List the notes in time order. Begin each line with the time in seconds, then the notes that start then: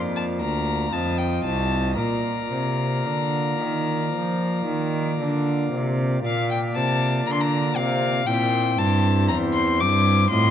Already playing: F2 A#3 F4 D5
0.16 A5
0.40 D2 A#5
0.89 C4 F4 D#5 A5
0.93 F2
1.18 G5
1.44 C2 A5
1.94 A#2 A#3 F4 D5 A#5
1.98 A#2
2.52 C3
3.05 D3
3.59 D#3
4.12 F3
4.66 D#3
5.19 D3
5.72 C3
6.20 A#3 F4 D5
6.24 A#2 F5
6.51 G5
6.76 C3 A5
7.27 D3 A#5
7.33 C6
7.41 A#5
7.76 C3 F5
8.24 C4 E4 C5 G5
8.28 A#2
8.78 G2 A5
9.28 E2 A#5
9.54 C6
9.80 G2 D6
10.28 A2 C4 F4 D#5 C6
10.32 A2